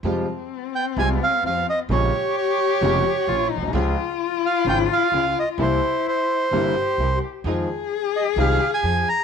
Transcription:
0.03 0.24 F2 medium
0.03 0.24 C3 medium
0.03 0.25 F3 medium
0.03 0.24 G3 medium
0.03 0.24 G#3 medium
0.03 0.25 G#3 medium
0.03 1.86 C4 medium
0.03 0.24 F4 medium
0.03 0.25 F4 medium
0.03 0.24 G4 medium
0.75 0.86 G5 medium
0.97 1.17 C2 medium
0.97 1.17 C3 medium
0.97 1.17 G3 medium
0.97 1.17 G#3 medium
0.97 1.17 F4 medium
0.97 1.18 F4 medium
0.97 1.17 G4 medium
0.97 1.09 G#5 loud
1.24 1.44 F5 medium
1.43 1.63 F2 medium
1.43 1.64 F2 soft
1.43 1.64 F3 soft
1.43 1.64 G#3 soft
1.43 1.64 F4 soft
1.43 1.64 G4 soft
1.43 1.67 F5 medium
1.70 1.79 D#5 medium
1.89 2.09 A#1 medium
1.89 2.10 A#1 medium
1.89 2.10 A#2 medium
1.89 2.10 C#3 medium
1.89 2.10 G#3 medium
1.89 2.09 A#3 medium
1.89 2.10 A#3 medium
1.89 2.10 C#4 medium
1.89 2.10 F4 medium
1.89 3.30 G4 loud
1.89 2.10 G#4 medium
1.89 2.36 C#5 medium
2.38 3.48 C#5 medium
2.81 3.01 F1 medium
2.81 3.02 F1 medium
2.81 3.02 F2 medium
2.81 3.02 C#3 medium
2.81 3.02 G#3 medium
2.81 3.01 A#3 medium
2.81 3.02 A#3 medium
2.81 3.01 C#4 medium
2.81 3.02 F4 medium
2.81 3.02 G#4 medium
3.27 3.47 A#1 medium
3.27 3.48 A#1 medium
3.27 3.48 A#2 medium
3.27 3.47 A#3 soft
3.27 3.47 C#4 soft
3.27 3.52 F4 medium
3.27 3.48 G#4 medium
3.50 3.75 D#4 medium
3.56 3.61 A#1 soft
3.56 3.63 A#1 soft
3.62 3.67 B1 medium
3.62 3.69 B1 medium
3.67 3.72 C2 medium
3.67 3.74 C2 medium
3.72 3.93 C#2 medium
3.72 3.94 C#2 medium
3.72 3.94 C#3 medium
3.72 3.94 F3 medium
3.72 3.94 G#3 medium
3.72 3.93 C#4 medium
3.72 3.93 F4 medium
3.72 5.60 F4 loud
3.72 3.94 F4 medium
3.72 3.93 G#4 medium
4.46 4.66 F5 medium
4.65 4.85 G#1 medium
4.65 4.86 G#1 medium
4.65 4.86 G#2 medium
4.65 4.86 C#3 medium
4.65 4.86 F3 medium
4.65 4.86 G#3 medium
4.65 4.85 C#4 medium
4.65 4.86 F4 medium
4.65 4.86 G#4 medium
4.69 4.79 G5 loud
4.93 5.39 F5 medium
5.12 5.32 C#2 medium
5.12 5.33 C#2 soft
5.12 5.33 C#3 medium
5.12 5.32 C#4 soft
5.12 5.32 F4 soft
5.12 5.32 G#4 medium
5.39 5.49 D#5 medium
5.58 5.78 C2 medium
5.58 5.79 C2 medium
5.58 5.78 C3 medium
5.58 5.79 G3 medium
5.58 5.79 A#3 medium
5.58 5.78 C4 medium
5.58 5.78 E4 medium
5.58 6.51 E4 medium
5.58 5.79 E4 medium
5.58 5.78 A#4 medium
5.62 6.07 C5 medium
6.08 7.19 C5 medium
6.51 6.71 G1 medium
6.51 6.72 G1 medium
6.51 6.72 G2 medium
6.51 6.71 C3 medium
6.51 6.71 G3 medium
6.51 6.71 A#3 medium
6.51 6.71 C4 medium
6.51 6.71 E4 medium
6.51 6.76 E4 medium
6.51 6.72 E4 medium
6.51 6.71 A#4 medium
6.75 7.22 G4 medium
6.97 7.17 C2 medium
6.97 7.19 C2 soft
6.97 7.19 C3 soft
6.97 7.18 C4 soft
6.97 7.18 E4 soft
6.97 7.18 A#4 medium
7.44 7.64 F2 medium
7.44 7.66 F2 medium
7.44 7.66 D#3 medium
7.44 7.66 F3 medium
7.44 7.66 G#3 medium
7.44 7.66 C4 medium
7.44 7.64 D#4 medium
7.44 7.65 F4 medium
7.44 7.66 F4 medium
7.44 7.65 G#4 medium
7.44 9.24 G#4 loud
8.16 8.26 D#5 medium
8.36 8.56 C2 medium
8.36 8.57 C2 medium
8.36 8.57 C3 medium
8.36 8.57 D#3 medium
8.36 8.57 G#3 medium
8.36 8.57 C4 medium
8.36 8.57 D#4 medium
8.36 8.57 F4 medium
8.36 8.57 G#4 medium
8.36 8.71 F5 medium
8.74 9.09 G#5 medium
8.83 9.03 F2 medium
8.83 9.03 F2 soft
8.83 9.03 F3 medium
8.83 9.03 D#4 soft
8.83 9.03 F4 soft
8.83 9.03 G#4 soft
9.09 9.24 A#5 loud

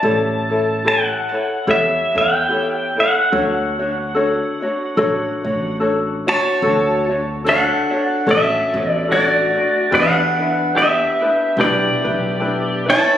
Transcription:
0.00 1.10 A1 medium
0.00 0.50 E4 medium
0.00 0.50 G4 medium
0.00 0.88 A5 medium
0.04 0.50 A4 medium
0.04 0.48 C#5 medium
0.49 0.84 E4 soft
0.49 0.85 A4 soft
0.49 0.85 C#5 soft
0.84 1.32 E4 medium
0.84 1.32 G4 medium
0.84 1.32 A4 medium
0.84 1.31 C#5 medium
0.84 1.72 F#5 medium
1.32 1.67 E4 soft
1.32 1.66 A4 soft
1.32 1.67 C#5 soft
1.67 1.98 E2 medium
1.67 2.15 E4 medium
1.67 2.15 G4 medium
1.67 2.14 A4 medium
1.67 2.13 C#5 medium
1.67 2.17 E5 medium
2.15 2.92 E2 medium
2.15 2.48 E4 soft
2.15 2.49 A4 medium
2.15 2.50 C#5 medium
2.15 3.00 G5 medium
2.49 2.97 E4 medium
2.49 2.97 G4 soft
2.49 2.96 A4 medium
2.49 2.95 C#5 medium
2.96 3.32 E4 soft
2.96 3.30 A4 soft
2.96 3.31 C#5 soft
2.96 5.77 F#5 medium
3.32 4.40 D2 medium
3.32 3.80 D4 medium
3.32 3.79 F#4 medium
3.32 3.79 A4 medium
3.32 3.78 C#5 medium
3.79 4.14 D4 soft
3.79 4.15 F#4 soft
3.79 4.15 C#5 soft
4.15 4.63 D4 medium
4.15 4.62 F#4 medium
4.15 4.62 A4 medium
4.15 4.61 C#5 medium
4.62 4.97 D4 soft
4.62 4.97 F#4 soft
4.62 4.97 C#5 medium
4.97 5.28 A1 medium
4.97 5.45 D4 medium
4.97 5.44 F#4 medium
4.97 5.44 A4 medium
4.97 5.43 C#5 medium
5.44 6.21 A1 medium
5.44 5.79 D4 soft
5.44 5.80 F#4 medium
5.44 5.80 C#5 medium
5.80 6.27 D4 medium
5.80 6.27 F#4 medium
5.80 6.27 A4 medium
5.80 6.26 C#5 medium
6.27 6.62 D4 soft
6.27 6.62 F#4 medium
6.27 7.06 F#4 medium
6.27 6.62 C#5 medium
6.27 7.07 C#5 medium
6.27 7.06 A5 medium
6.62 7.69 D2 medium
6.62 7.10 D4 medium
6.62 7.09 F#4 medium
6.62 7.10 A4 medium
6.62 7.08 C#5 medium
7.09 7.44 D4 soft
7.09 7.44 F#4 soft
7.09 7.45 C#5 soft
7.44 7.92 D4 medium
7.44 8.24 D4 medium
7.44 7.91 F#4 medium
7.44 7.92 A4 medium
7.44 7.90 C#5 medium
7.49 8.25 A4 medium
7.49 8.31 F#5 medium
7.91 8.27 D4 soft
7.91 8.26 F#4 soft
7.91 8.26 C#5 medium
8.27 8.57 A1 medium
8.27 8.85 C#4 medium
8.27 8.73 F#4 medium
8.27 8.74 A4 medium
8.27 9.07 A4 medium
8.27 8.72 C#5 medium
8.31 8.91 E5 medium
8.73 9.50 A1 medium
8.73 9.08 F#4 medium
8.73 9.09 C#5 medium
8.85 9.06 B3 medium
8.91 9.12 D5 medium
9.08 9.56 D4 medium
9.08 9.56 F#4 medium
9.08 9.89 F#4 medium
9.08 9.56 A4 medium
9.12 9.89 A3 medium
9.12 9.96 D5 medium
9.57 9.91 D4 soft
9.57 9.91 F#4 soft
9.91 10.99 E2 loud
9.91 10.39 D4 medium
9.91 10.39 E4 medium
9.91 10.39 G4 medium
9.91 10.38 B4 medium
9.91 10.71 B4 medium
9.91 10.77 F#5 medium
9.95 10.72 D4 medium
10.40 10.75 D4 soft
10.40 10.75 E4 soft
10.40 10.75 B4 soft
10.75 11.55 B3 medium
10.75 11.22 D4 medium
10.75 11.22 E4 medium
10.75 11.22 G4 medium
10.75 11.54 G4 medium
10.75 11.21 B4 medium
10.75 11.60 E5 medium
11.22 11.57 D4 soft
11.22 11.58 E4 soft
11.22 11.57 B4 medium
11.57 11.88 B1 medium
11.57 12.05 D4 medium
11.57 12.04 E4 medium
11.57 12.05 G4 medium
11.57 12.84 G4 medium
11.57 12.03 B4 medium
11.61 12.85 B3 medium
11.61 12.93 D5 medium
12.04 12.81 B1 medium
12.04 12.39 D4 soft
12.04 12.40 E4 medium
12.04 12.39 B4 medium
12.40 12.87 D4 medium
12.40 12.86 E4 medium
12.40 12.87 G4 medium
12.40 12.85 B4 medium
12.86 13.18 D4 soft
12.86 13.18 E4 soft
12.86 13.18 B4 soft
12.86 13.18 C#5 medium
12.90 13.18 E4 medium
12.90 13.18 A5 loud

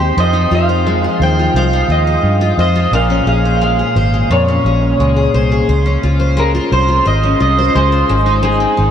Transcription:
0.00 0.10 D#2 medium
0.00 0.17 G#3 medium
0.00 0.86 C4 medium
0.00 0.33 D#4 medium
0.00 0.24 G4 medium
0.00 0.18 C5 medium
0.00 0.20 C5 loud
0.17 0.45 F2 loud
0.17 1.56 F3 medium
0.17 0.69 C5 medium
0.17 0.54 D#5 loud
0.33 1.72 D#4 medium
0.51 1.06 F2 medium
0.51 1.04 F4 medium
0.51 1.23 F5 loud
0.69 1.21 C5 medium
0.87 2.96 G#3 medium
1.04 1.39 F4 medium
1.20 1.48 D#2 medium
1.20 1.56 C5 medium
1.20 1.57 G5 loud
1.39 1.89 F4 medium
1.54 1.82 C2 medium
1.54 5.06 F3 medium
1.54 2.07 C5 medium
1.54 1.91 F5 loud
1.73 3.00 D#4 medium
1.88 2.16 D#2 medium
1.88 2.41 F4 medium
1.88 2.59 D#5 loud
2.07 2.58 C5 medium
2.23 2.51 G2 loud
2.41 2.75 F4 medium
2.57 2.85 F2 medium
2.57 2.93 C5 medium
2.57 2.95 D#5 loud
2.75 3.27 F4 medium
2.91 3.19 A#1 loud
2.91 4.29 A#2 medium
2.91 3.45 C5 medium
2.91 3.28 F5 loud
3.10 4.48 C#4 medium
3.26 3.81 A#1 loud
3.26 3.79 G#4 medium
3.26 3.63 F5 loud
3.45 3.96 C5 medium
3.61 5.00 G#3 medium
3.61 4.28 F5 loud
3.79 4.13 G#4 medium
3.96 4.23 G#1 medium
3.96 4.34 C5 medium
4.14 4.66 G#4 medium
4.30 4.58 F2 medium
4.30 5.68 A#2 medium
4.30 5.30 C#5 medium
4.48 5.85 C#4 medium
4.65 4.92 A#1 loud
4.65 5.16 G#4 medium
4.99 5.27 C#2 medium
4.99 6.36 G#3 medium
5.16 5.51 G#4 medium
5.34 5.61 C2 medium
5.34 5.69 C5 medium
5.52 6.03 G#4 medium
5.68 5.96 C#2 loud
5.68 6.19 C5 medium
5.86 7.22 C#4 medium
6.03 6.58 C#2 loud
6.03 6.53 F4 medium
6.20 6.72 C5 medium
6.37 7.75 G#3 medium
6.37 6.48 A#4 loud
6.55 6.87 F4 medium
6.72 6.99 C2 loud
6.72 7.05 C5 medium
6.72 7.07 C5 loud
6.88 7.39 F4 medium
7.05 7.34 G#1 loud
7.05 7.58 C5 medium
7.05 7.41 D#5 loud
7.23 8.16 C#4 medium
7.40 7.68 C2 medium
7.40 7.91 F4 medium
7.40 7.73 D#5 loud
7.59 8.17 C5 medium
7.75 8.02 C#2 loud
7.75 8.09 G#3 medium
7.75 8.40 C5 loud
7.92 8.16 F4 medium
8.09 8.64 G#1 medium
8.09 8.42 G#3 medium
8.26 8.77 D#4 medium
8.43 8.91 G#3 medium
8.43 8.91 G#4 medium
8.60 8.91 C4 medium
8.77 8.91 G#1 loud
8.77 8.91 D#4 medium

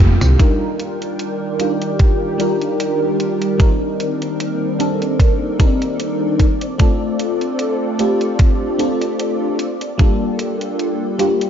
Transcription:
0.00 0.17 F1 medium
0.00 0.38 G3 medium
0.00 0.36 A#3 medium
0.00 0.41 A#3 medium
0.00 0.39 D4 medium
0.00 0.41 F4 medium
0.00 0.42 G4 medium
0.00 0.36 A4 loud
0.00 0.36 F5 medium
0.00 0.36 G5 medium
0.00 0.36 D6 medium
0.21 0.36 C2 medium
0.21 closed hi-hat medium
0.21 mid tom medium
0.21 tambourine medium
0.38 6.36 D#3 medium
0.38 1.55 G3 medium
0.38 1.55 D4 medium
0.38 1.55 D#4 medium
0.38 1.56 F4 medium
0.38 3.56 A#4 medium
0.38 1.56 A#4 medium
0.38 3.56 D5 medium
0.38 3.56 G5 medium
0.38 kick loud
0.38 closed hi-hat medium
0.80 closed hi-hat medium
1.02 closed hi-hat soft
1.19 closed hi-hat medium
1.59 2.35 G3 medium
1.59 2.35 D4 medium
1.59 2.35 D#4 medium
1.59 2.36 F4 medium
1.59 2.36 G4 medium
1.59 closed hi-hat medium
1.82 closed hi-hat soft
1.99 kick loud
1.99 closed hi-hat medium
2.38 3.55 G3 medium
2.38 3.55 D4 medium
2.38 3.55 D#4 medium
2.38 3.56 F4 medium
2.38 3.56 A#4 medium
2.38 closed hi-hat medium
2.62 closed hi-hat soft
2.80 closed hi-hat medium
3.20 closed hi-hat medium
3.42 closed hi-hat medium
3.58 4.75 G3 medium
3.58 6.37 A#3 medium
3.58 4.75 C4 medium
3.58 6.37 C4 medium
3.58 4.75 D4 medium
3.58 4.76 D#4 medium
3.58 4.76 A#4 medium
3.58 11.16 D5 medium
3.58 kick loud
3.58 closed hi-hat medium
4.00 closed hi-hat medium
4.22 closed hi-hat soft
4.40 closed hi-hat medium
4.79 5.55 G3 medium
4.79 5.55 C4 medium
4.79 5.55 D4 medium
4.79 5.55 D#4 medium
4.79 5.56 A4 medium
4.79 closed hi-hat medium
5.02 closed hi-hat soft
5.20 kick loud
5.20 closed hi-hat medium
5.59 6.37 G3 medium
5.59 6.37 C4 medium
5.59 6.38 D4 medium
5.59 6.38 D#4 medium
5.59 6.38 A#4 medium
5.59 kick loud
5.59 closed hi-hat medium
5.82 closed hi-hat medium
6.00 closed hi-hat medium
6.40 9.57 C4 medium
6.40 11.50 F4 medium
6.40 9.57 A4 medium
6.40 kick medium
6.40 closed hi-hat medium
6.61 closed hi-hat medium
6.78 7.95 A3 medium
6.78 7.95 C4 medium
6.78 7.95 D4 medium
6.78 7.96 F4 medium
6.78 7.96 A4 medium
6.78 kick loud
6.78 closed hi-hat medium
7.19 closed hi-hat medium
7.41 closed hi-hat medium
7.59 closed hi-hat medium
7.99 8.75 A3 medium
7.99 8.75 C4 medium
7.99 8.75 D4 medium
7.99 8.76 F4 medium
7.99 8.76 G4 medium
7.99 closed hi-hat medium
8.21 closed hi-hat soft
8.39 kick loud
8.39 closed hi-hat medium
8.78 9.57 A3 medium
8.78 9.57 C4 medium
8.78 9.57 D4 medium
8.78 9.58 F4 medium
8.78 9.58 A4 medium
8.78 closed hi-hat medium
9.02 closed hi-hat soft
9.20 closed hi-hat medium
9.59 11.50 A#3 medium
9.59 11.50 G4 medium
9.59 closed hi-hat medium
9.81 closed hi-hat medium
9.98 11.14 G3 medium
9.98 11.15 A#3 medium
9.98 11.15 D4 medium
9.98 11.16 F4 medium
9.98 11.16 A4 medium
9.98 kick loud
9.98 closed hi-hat medium
10.39 closed hi-hat medium
10.61 closed hi-hat soft
10.79 closed hi-hat medium
11.18 11.50 G3 medium
11.18 11.50 A#3 medium
11.18 11.50 D4 medium
11.18 11.50 F4 medium
11.18 11.50 G4 medium
11.18 11.50 C5 medium
11.18 closed hi-hat medium
11.41 closed hi-hat soft

